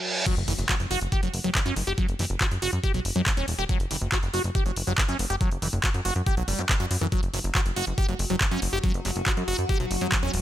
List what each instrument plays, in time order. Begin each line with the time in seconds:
Already playing: reverse cymbal
0.26 acid bass F#3, kick, closed hi-hat, crash, impact
0.37 analog synth bass F#1, closed hi-hat
0.48 analog synth bass F#1, acid bass E3, open hi-hat
0.59 analog synth bass F#1, closed hi-hat
0.69 acid bass F#4, kick, clap, closed hi-hat
0.80 analog synth bass F#1, closed hi-hat
0.91 analog synth bass F#1, acid bass F#4, open hi-hat
1.01 analog synth bass F#1, closed hi-hat
1.12 acid bass G4, kick, closed hi-hat
1.23 analog synth bass F#1, acid bass F#3, closed hi-hat
1.34 analog synth bass F#1, open hi-hat
1.44 analog synth bass F#1, acid bass F#3, closed hi-hat
1.55 kick, clap, closed hi-hat
1.66 analog synth bass F#2, acid bass C#4, closed hi-hat
1.76 analog synth bass F#1, open hi-hat
1.87 analog synth bass F#1, acid bass G4, closed hi-hat
1.98 acid bass F#3, kick, closed hi-hat
2.09 analog synth bass F#1, closed hi-hat
2.19 analog synth bass F#1, acid bass E3, open hi-hat
2.30 analog synth bass F#1, closed hi-hat
2.41 acid bass F#4, kick, clap, closed hi-hat
2.51 analog synth bass F#2, closed hi-hat
2.62 analog synth bass F#1, acid bass F#4, open hi-hat
2.73 analog synth bass F#2, closed hi-hat
2.84 acid bass G4, kick, closed hi-hat
2.94 analog synth bass B1, acid bass F#3, closed hi-hat
3.05 analog synth bass F#1, open hi-hat
3.16 analog synth bass F#2, acid bass F#3, closed hi-hat
3.26 kick, clap, closed hi-hat
3.37 analog synth bass E1, acid bass C#4, closed hi-hat
3.48 analog synth bass E1, open hi-hat
3.59 analog synth bass E1, acid bass G4, closed hi-hat
3.69 acid bass F#3, kick, closed hi-hat
3.80 analog synth bass F#1, closed hi-hat
3.91 analog synth bass F#1, acid bass E3, open hi-hat
4.01 analog synth bass F#1, closed hi-hat
4.12 acid bass F#4, kick, clap, closed hi-hat
4.23 analog synth bass F#1, closed hi-hat
4.34 analog synth bass F#1, acid bass F#4, open hi-hat
4.44 analog synth bass F#1, closed hi-hat
4.55 acid bass G4, kick, closed hi-hat
4.66 analog synth bass F#1, acid bass F#3, closed hi-hat
4.76 analog synth bass F#1, open hi-hat
4.87 analog synth bass F#1, acid bass F#3, closed hi-hat
4.98 kick, clap, closed hi-hat
5.09 analog synth bass F#2, acid bass C#4, closed hi-hat
5.19 analog synth bass F#1, open hi-hat
5.30 analog synth bass F#1, acid bass G4, closed hi-hat
5.41 acid bass F#3, kick, closed hi-hat
5.51 analog synth bass F#1, closed hi-hat
5.62 analog synth bass F#1, acid bass E3, open hi-hat
5.73 analog synth bass F#1, closed hi-hat
5.84 acid bass F#4, kick, clap, closed hi-hat
5.94 analog synth bass F#2, closed hi-hat
6.05 analog synth bass F#1, acid bass F#4, open hi-hat
6.16 analog synth bass F#2, closed hi-hat
6.26 acid bass G4, kick, closed hi-hat
6.37 analog synth bass B1, acid bass F#3, closed hi-hat
6.48 analog synth bass F#1, acid bass G3, open hi-hat
6.59 analog synth bass F#2, acid bass F#4, closed hi-hat
6.69 kick, clap, closed hi-hat
6.80 analog synth bass F#2, acid bass F#4, closed hi-hat
6.91 analog synth bass F#2, open hi-hat
7.01 analog synth bass F#2, acid bass E3, closed hi-hat
7.12 acid bass F#3, ambient pad F#3 F#4, kick, closed hi-hat
7.23 analog synth bass F#1, closed hi-hat
7.34 analog synth bass F#1, acid bass F#3, open hi-hat
7.44 analog synth bass F#1, closed hi-hat
7.55 acid bass F#4, kick, clap, closed hi-hat
7.66 analog synth bass F#1, closed hi-hat
7.76 analog synth bass F#1, acid bass F#4, open hi-hat
7.87 analog synth bass F#1, closed hi-hat
7.98 acid bass G4, kick, closed hi-hat
8.09 analog synth bass F#1, acid bass F#3, closed hi-hat
8.19 analog synth bass F#1, open hi-hat
8.30 analog synth bass F#1, acid bass F#3, closed hi-hat
8.41 kick, clap, closed hi-hat
8.51 analog synth bass F#2, acid bass C#4, closed hi-hat
8.62 analog synth bass F#1, open hi-hat
8.73 analog synth bass F#1, acid bass G4, closed hi-hat
8.84 acid bass F#3, kick, closed hi-hat
8.94 analog synth bass F#1, closed hi-hat
9.05 analog synth bass F#1, acid bass F#3, open hi-hat
9.16 analog synth bass F#1, closed hi-hat
9.26 acid bass F#4, kick, clap, closed hi-hat
9.37 analog synth bass F#2, closed hi-hat
9.48 analog synth bass F#1, acid bass F#4, open hi-hat
9.59 analog synth bass F#2, closed hi-hat
9.69 acid bass G4, kick, closed hi-hat
9.80 analog synth bass B1, acid bass F#3, closed hi-hat
9.91 analog synth bass F#1, open hi-hat
10.01 analog synth bass F#2, acid bass F#3, closed hi-hat
10.12 kick, clap, closed hi-hat
10.23 analog synth bass E1, acid bass C#4, closed hi-hat
10.34 analog synth bass E1, open hi-hat